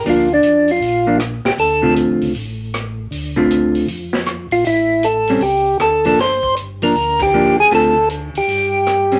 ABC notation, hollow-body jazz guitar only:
X:1
M:4/4
L:1/8
Q:"Swing" 1/4=157
K:Dm
V:1 name="Hollow-body jazz guitar"
[F,B,D] z4 [F,B,D] z2 | z [D,A,CF]3 z4 | z [D,A,CF]3 z4 | z3 [G,^B,^C] z3 [F,_B,D] |
z3 [F,B,D] z2 [F,B,D] z | [D,A,CF] z6 [G,C^C] |]